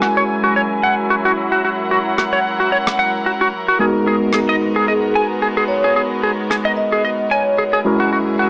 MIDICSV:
0, 0, Header, 1, 6, 480
1, 0, Start_track
1, 0, Key_signature, 5, "minor"
1, 0, Tempo, 540541
1, 1456, Time_signature, 4, 2, 24, 8
1, 7546, End_track
2, 0, Start_track
2, 0, Title_t, "Vibraphone"
2, 0, Program_c, 0, 11
2, 4330, Note_on_c, 0, 68, 76
2, 4416, Note_off_c, 0, 68, 0
2, 4458, Note_on_c, 0, 68, 65
2, 4532, Note_off_c, 0, 68, 0
2, 5045, Note_on_c, 0, 73, 78
2, 5134, Note_off_c, 0, 73, 0
2, 5179, Note_on_c, 0, 73, 71
2, 5253, Note_off_c, 0, 73, 0
2, 6008, Note_on_c, 0, 75, 81
2, 6470, Note_off_c, 0, 75, 0
2, 6492, Note_on_c, 0, 73, 79
2, 6865, Note_off_c, 0, 73, 0
2, 7546, End_track
3, 0, Start_track
3, 0, Title_t, "Clean electric guitar"
3, 0, Program_c, 1, 27
3, 20, Note_on_c, 1, 66, 73
3, 57, Note_off_c, 1, 66, 0
3, 151, Note_on_c, 1, 73, 94
3, 204, Note_off_c, 1, 73, 0
3, 387, Note_on_c, 1, 66, 70
3, 469, Note_off_c, 1, 66, 0
3, 499, Note_on_c, 1, 73, 74
3, 537, Note_off_c, 1, 73, 0
3, 741, Note_on_c, 1, 78, 70
3, 837, Note_off_c, 1, 78, 0
3, 980, Note_on_c, 1, 66, 77
3, 1017, Note_off_c, 1, 66, 0
3, 1112, Note_on_c, 1, 66, 93
3, 1164, Note_off_c, 1, 66, 0
3, 1349, Note_on_c, 1, 66, 67
3, 1430, Note_off_c, 1, 66, 0
3, 1462, Note_on_c, 1, 66, 77
3, 1498, Note_off_c, 1, 66, 0
3, 1698, Note_on_c, 1, 66, 67
3, 1763, Note_off_c, 1, 66, 0
3, 1938, Note_on_c, 1, 66, 73
3, 1976, Note_off_c, 1, 66, 0
3, 2067, Note_on_c, 1, 73, 90
3, 2122, Note_off_c, 1, 73, 0
3, 2308, Note_on_c, 1, 66, 64
3, 2389, Note_off_c, 1, 66, 0
3, 2417, Note_on_c, 1, 73, 72
3, 2455, Note_off_c, 1, 73, 0
3, 2656, Note_on_c, 1, 78, 70
3, 2754, Note_off_c, 1, 78, 0
3, 2897, Note_on_c, 1, 66, 68
3, 2936, Note_off_c, 1, 66, 0
3, 3028, Note_on_c, 1, 66, 95
3, 3082, Note_off_c, 1, 66, 0
3, 3271, Note_on_c, 1, 66, 68
3, 3351, Note_off_c, 1, 66, 0
3, 3377, Note_on_c, 1, 68, 77
3, 3416, Note_off_c, 1, 68, 0
3, 3618, Note_on_c, 1, 68, 67
3, 3682, Note_off_c, 1, 68, 0
3, 3855, Note_on_c, 1, 68, 71
3, 3895, Note_off_c, 1, 68, 0
3, 3986, Note_on_c, 1, 75, 90
3, 4041, Note_off_c, 1, 75, 0
3, 4227, Note_on_c, 1, 68, 67
3, 4309, Note_off_c, 1, 68, 0
3, 4335, Note_on_c, 1, 75, 73
3, 4375, Note_off_c, 1, 75, 0
3, 4577, Note_on_c, 1, 80, 71
3, 4675, Note_off_c, 1, 80, 0
3, 4815, Note_on_c, 1, 68, 71
3, 4855, Note_off_c, 1, 68, 0
3, 4947, Note_on_c, 1, 68, 93
3, 5002, Note_off_c, 1, 68, 0
3, 5188, Note_on_c, 1, 68, 70
3, 5269, Note_off_c, 1, 68, 0
3, 5294, Note_on_c, 1, 68, 80
3, 5334, Note_off_c, 1, 68, 0
3, 5537, Note_on_c, 1, 68, 67
3, 5602, Note_off_c, 1, 68, 0
3, 5778, Note_on_c, 1, 68, 70
3, 5816, Note_off_c, 1, 68, 0
3, 5906, Note_on_c, 1, 75, 96
3, 5961, Note_off_c, 1, 75, 0
3, 6149, Note_on_c, 1, 68, 70
3, 6230, Note_off_c, 1, 68, 0
3, 6257, Note_on_c, 1, 75, 74
3, 6296, Note_off_c, 1, 75, 0
3, 6494, Note_on_c, 1, 80, 73
3, 6593, Note_off_c, 1, 80, 0
3, 6734, Note_on_c, 1, 68, 77
3, 6774, Note_off_c, 1, 68, 0
3, 6865, Note_on_c, 1, 68, 93
3, 6921, Note_off_c, 1, 68, 0
3, 7103, Note_on_c, 1, 66, 71
3, 7187, Note_off_c, 1, 66, 0
3, 7216, Note_on_c, 1, 66, 79
3, 7255, Note_off_c, 1, 66, 0
3, 7453, Note_on_c, 1, 66, 72
3, 7520, Note_off_c, 1, 66, 0
3, 7546, End_track
4, 0, Start_track
4, 0, Title_t, "String section"
4, 0, Program_c, 2, 48
4, 0, Note_on_c, 2, 54, 75
4, 0, Note_on_c, 2, 64, 67
4, 0, Note_on_c, 2, 70, 65
4, 0, Note_on_c, 2, 80, 78
4, 1196, Note_off_c, 2, 80, 0
4, 1218, Note_on_c, 2, 78, 81
4, 3340, Note_off_c, 2, 54, 0
4, 3341, Note_off_c, 2, 64, 0
4, 3355, Note_off_c, 2, 78, 0
4, 3371, Note_on_c, 2, 59, 74
4, 3372, Note_on_c, 2, 66, 66
4, 3375, Note_on_c, 2, 56, 67
4, 6938, Note_off_c, 2, 59, 0
4, 6939, Note_off_c, 2, 66, 0
4, 6940, Note_off_c, 2, 56, 0
4, 6976, Note_on_c, 2, 54, 74
4, 6976, Note_on_c, 2, 64, 69
4, 6976, Note_on_c, 2, 68, 68
4, 7546, Note_off_c, 2, 54, 0
4, 7546, Note_off_c, 2, 64, 0
4, 7546, Note_off_c, 2, 68, 0
4, 7546, Note_off_c, 2, 70, 0
4, 7546, End_track
5, 0, Start_track
5, 0, Title_t, "Tine electric piano"
5, 0, Program_c, 3, 4
5, 0, Note_on_c, 3, 56, 68
5, 0, Note_on_c, 3, 61, 59
5, 0, Note_on_c, 3, 64, 62
5, 0, Note_on_c, 3, 66, 64
5, 0, Note_on_c, 3, 70, 74
5, 3106, Note_off_c, 3, 56, 0
5, 3109, Note_off_c, 3, 61, 0
5, 3110, Note_off_c, 3, 64, 0
5, 3112, Note_off_c, 3, 66, 0
5, 3116, Note_off_c, 3, 70, 0
5, 3366, Note_on_c, 3, 56, 65
5, 3371, Note_on_c, 3, 59, 59
5, 3375, Note_on_c, 3, 63, 62
5, 3380, Note_on_c, 3, 66, 63
5, 3383, Note_on_c, 3, 70, 74
5, 6945, Note_off_c, 3, 56, 0
5, 6947, Note_off_c, 3, 59, 0
5, 6949, Note_off_c, 3, 63, 0
5, 6952, Note_off_c, 3, 66, 0
5, 6953, Note_off_c, 3, 70, 0
5, 6967, Note_on_c, 3, 56, 71
5, 6970, Note_on_c, 3, 61, 65
5, 6976, Note_on_c, 3, 64, 64
5, 6978, Note_on_c, 3, 66, 63
5, 6985, Note_on_c, 3, 70, 77
5, 7546, Note_off_c, 3, 56, 0
5, 7546, Note_off_c, 3, 61, 0
5, 7546, Note_off_c, 3, 64, 0
5, 7546, Note_off_c, 3, 66, 0
5, 7546, Note_off_c, 3, 70, 0
5, 7546, End_track
6, 0, Start_track
6, 0, Title_t, "Drums"
6, 16, Note_on_c, 9, 37, 48
6, 105, Note_off_c, 9, 37, 0
6, 1938, Note_on_c, 9, 37, 51
6, 2027, Note_off_c, 9, 37, 0
6, 2550, Note_on_c, 9, 37, 72
6, 2638, Note_off_c, 9, 37, 0
6, 3841, Note_on_c, 9, 37, 58
6, 3930, Note_off_c, 9, 37, 0
6, 5780, Note_on_c, 9, 37, 54
6, 5869, Note_off_c, 9, 37, 0
6, 7546, End_track
0, 0, End_of_file